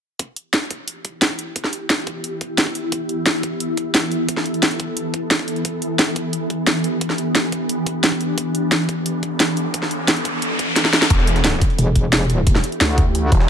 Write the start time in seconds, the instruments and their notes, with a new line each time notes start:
0.19 synth drone E3 B3 E4 G4, kick, closed hi-hat
0.36 closed hi-hat
0.53 snare, closed hi-hat
0.71 kick, closed hi-hat
0.88 closed hi-hat
1.05 kick, closed hi-hat
1.22 snare, closed hi-hat
1.39 closed hi-hat
1.56 kick, closed hi-hat
1.64 snare
1.73 closed hi-hat
1.90 snare, closed hi-hat
2.07 kick, closed hi-hat
2.24 closed hi-hat
2.41 kick, closed hi-hat
2.58 snare, closed hi-hat
2.67 kick
2.75 closed hi-hat
2.92 synth drone A4, kick, closed hi-hat
3.09 closed hi-hat
3.26 snare, closed hi-hat
3.43 kick, closed hi-hat
3.60 closed hi-hat
3.77 kick, closed hi-hat
3.94 snare, closed hi-hat
4.12 closed hi-hat
4.29 kick, closed hi-hat
4.37 snare
4.46 closed hi-hat
4.54 closed hi-hat
4.63 snare, closed hi-hat
4.71 closed hi-hat
4.80 kick, closed hi-hat
4.97 closed hi-hat
5.14 kick, closed hi-hat
5.31 snare, closed hi-hat
5.39 kick
5.48 closed hi-hat
5.56 closed hi-hat
5.65 synth drone D4 G4, kick, closed hi-hat
5.82 closed hi-hat
5.99 snare, closed hi-hat
6.16 kick, closed hi-hat
6.33 closed hi-hat
6.50 kick, closed hi-hat
6.67 snare, closed hi-hat
6.84 closed hi-hat
7.01 kick, closed hi-hat
7.10 snare
7.18 closed hi-hat
7.35 snare, closed hi-hat
7.52 kick, closed hi-hat
7.69 closed hi-hat
7.86 kick, closed hi-hat
8.04 snare, closed hi-hat
8.12 kick
8.21 closed hi-hat
8.38 synth drone A4, kick, closed hi-hat, riser
8.55 closed hi-hat
8.72 snare, closed hi-hat
8.89 kick, closed hi-hat
9.06 closed hi-hat
9.23 kick, closed hi-hat
9.40 snare, closed hi-hat
9.57 closed hi-hat
9.74 kick, closed hi-hat
9.82 snare
9.91 closed hi-hat
10.08 snare, closed hi-hat
10.17 closed hi-hat
10.25 kick, closed hi-hat
10.42 closed hi-hat
10.59 kick, closed hi-hat
10.76 snare, closed hi-hat
10.85 kick, snare
10.93 snare, closed hi-hat
11.02 snare, closed hi-hat
11.10 detuned saw bass E1, synth drone E3 B3 E4 G4, kick, closed hi-hat
11.19 snare
11.27 closed hi-hat
11.36 snare, closed hi-hat
11.44 snare, closed hi-hat
11.53 snare
11.61 kick, closed hi-hat
11.70 closed hi-hat
11.79 wobble bass E1, closed hi-hat
11.96 kick, closed hi-hat
12.13 snare, closed hi-hat
12.30 closed hi-hat
12.47 kick, closed hi-hat
12.55 snare
12.64 closed hi-hat
12.72 closed hi-hat
12.81 wobble bass D2, snare, closed hi-hat
12.98 kick, closed hi-hat
13.15 closed hi-hat
13.32 detuned saw bass E1, kick, closed hi-hat
13.40 snare